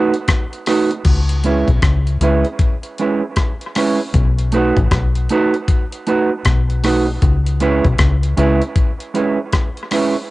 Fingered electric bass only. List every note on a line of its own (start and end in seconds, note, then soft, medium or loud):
1.05 1.64 C#2 medium
1.68 1.81 B1 medium
1.83 2.18 C#2 medium
2.21 2.43 C#2 medium
4.14 4.72 B1 loud
4.76 4.90 A1 medium
4.91 5.27 B1 medium
6.45 7.18 B1 medium
7.23 7.81 C#2 medium
7.85 7.98 B1 medium
7.99 8.35 C#2 medium
8.38 8.60 C#2 medium